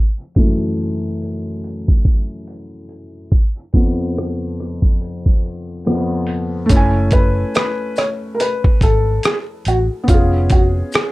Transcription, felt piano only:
0, 0, Header, 1, 2, 480
1, 0, Start_track
1, 0, Key_signature, 3, "minor"
1, 0, Tempo, 845070
1, 1886, Time_signature, 4, 2, 24, 8
1, 6316, End_track
2, 0, Start_track
2, 0, Title_t, "Felt piano"
2, 0, Program_c, 0, 0
2, 88, Control_c, 0, 64, 127
2, 206, Note_on_c, 0, 42, 48
2, 209, Note_on_c, 0, 52, 44
2, 214, Note_on_c, 0, 57, 54
2, 1863, Note_off_c, 0, 42, 0
2, 1865, Note_off_c, 0, 52, 0
2, 1867, Note_off_c, 0, 57, 0
2, 1893, Control_c, 0, 64, 0
2, 2004, Control_c, 0, 64, 127
2, 2126, Note_on_c, 0, 41, 52
2, 2130, Note_on_c, 0, 53, 44
2, 2134, Note_on_c, 0, 59, 55
2, 2460, Note_off_c, 0, 41, 0
2, 2462, Note_off_c, 0, 53, 0
2, 2464, Note_off_c, 0, 59, 0
2, 3330, Note_on_c, 0, 41, 43
2, 3331, Note_on_c, 0, 53, 44
2, 3335, Note_on_c, 0, 59, 49
2, 3545, Note_off_c, 0, 41, 0
2, 3546, Note_off_c, 0, 53, 0
2, 3548, Note_off_c, 0, 59, 0
2, 3781, Note_on_c, 0, 57, 76
2, 3802, Note_on_c, 0, 61, 73
2, 3812, Control_c, 0, 64, 0
2, 3821, Note_on_c, 0, 64, 72
2, 3842, Note_on_c, 0, 80, 92
2, 3897, Control_c, 0, 64, 127
2, 5691, Note_off_c, 0, 57, 0
2, 5700, Note_on_c, 0, 59, 57
2, 5701, Note_off_c, 0, 61, 0
2, 5711, Note_off_c, 0, 64, 0
2, 5720, Note_on_c, 0, 61, 61
2, 5721, Note_off_c, 0, 80, 0
2, 5733, Control_c, 0, 64, 0
2, 5740, Note_on_c, 0, 77, 53
2, 5761, Note_on_c, 0, 68, 71
2, 5845, Control_c, 0, 64, 127
2, 6316, Note_off_c, 0, 59, 0
2, 6316, Note_off_c, 0, 61, 0
2, 6316, Note_off_c, 0, 68, 0
2, 6316, Note_off_c, 0, 77, 0
2, 6316, End_track
0, 0, End_of_file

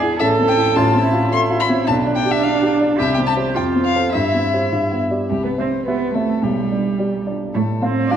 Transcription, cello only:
0, 0, Header, 1, 2, 480
1, 0, Start_track
1, 0, Key_signature, 0, "major"
1, 0, Tempo, 558659
1, 657, Time_signature, 2, 2, 24, 8
1, 2578, Tempo, 571973
1, 4978, Tempo, 560224
1, 6954, End_track
2, 0, Start_track
2, 0, Title_t, "Cello"
2, 0, Program_c, 0, 42
2, 0, Note_on_c, 0, 68, 97
2, 171, Note_off_c, 0, 68, 0
2, 176, Note_on_c, 0, 69, 106
2, 659, Note_on_c, 0, 65, 93
2, 672, Note_off_c, 0, 69, 0
2, 873, Note_off_c, 0, 65, 0
2, 878, Note_on_c, 0, 64, 81
2, 1613, Note_on_c, 0, 62, 105
2, 1626, Note_off_c, 0, 64, 0
2, 2565, Note_on_c, 0, 67, 92
2, 2578, Note_off_c, 0, 62, 0
2, 3036, Note_on_c, 0, 65, 89
2, 3049, Note_off_c, 0, 67, 0
2, 3528, Note_off_c, 0, 65, 0
2, 3535, Note_on_c, 0, 64, 75
2, 4247, Note_off_c, 0, 64, 0
2, 4508, Note_on_c, 0, 55, 75
2, 4555, Note_off_c, 0, 55, 0
2, 4635, Note_on_c, 0, 59, 70
2, 4680, Note_off_c, 0, 59, 0
2, 4758, Note_on_c, 0, 60, 74
2, 4825, Note_off_c, 0, 60, 0
2, 4985, Note_on_c, 0, 59, 82
2, 5220, Note_off_c, 0, 59, 0
2, 5231, Note_on_c, 0, 57, 76
2, 5479, Note_on_c, 0, 55, 73
2, 5492, Note_off_c, 0, 57, 0
2, 6186, Note_off_c, 0, 55, 0
2, 6422, Note_on_c, 0, 57, 91
2, 6491, Note_off_c, 0, 57, 0
2, 6661, Note_on_c, 0, 60, 90
2, 6906, Note_on_c, 0, 62, 109
2, 6919, Note_off_c, 0, 60, 0
2, 6954, Note_off_c, 0, 62, 0
2, 6954, End_track
0, 0, End_of_file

